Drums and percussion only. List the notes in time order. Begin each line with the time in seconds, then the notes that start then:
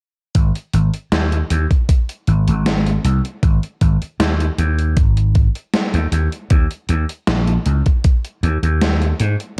0.35 kick, closed hi-hat
0.55 closed hi-hat
0.73 closed hi-hat
0.94 closed hi-hat
1.12 snare, closed hi-hat
1.32 closed hi-hat
1.50 closed hi-hat
1.71 kick, closed hi-hat
1.89 kick, closed hi-hat
2.09 closed hi-hat
2.27 closed hi-hat
2.48 closed hi-hat
2.66 snare, closed hi-hat
2.87 closed hi-hat
3.05 closed hi-hat
3.25 closed hi-hat
3.43 kick, closed hi-hat
3.63 closed hi-hat
3.81 kick, closed hi-hat
4.02 closed hi-hat
4.20 snare, closed hi-hat
4.40 closed hi-hat
4.58 closed hi-hat
4.79 closed hi-hat
4.97 kick, closed hi-hat
5.17 closed hi-hat
5.35 kick, closed hi-hat
5.55 closed hi-hat
5.74 snare, closed hi-hat
5.94 closed hi-hat
6.12 closed hi-hat
6.32 closed hi-hat
6.50 kick, closed hi-hat
6.71 closed hi-hat
6.89 closed hi-hat
7.09 closed hi-hat
7.27 snare, closed hi-hat
7.47 closed hi-hat
7.66 closed hi-hat
7.86 kick, closed hi-hat
8.04 kick, closed hi-hat
8.25 closed hi-hat
8.43 closed hi-hat
8.63 closed hi-hat
8.81 snare, closed hi-hat
9.02 closed hi-hat
9.20 closed hi-hat
9.40 closed hi-hat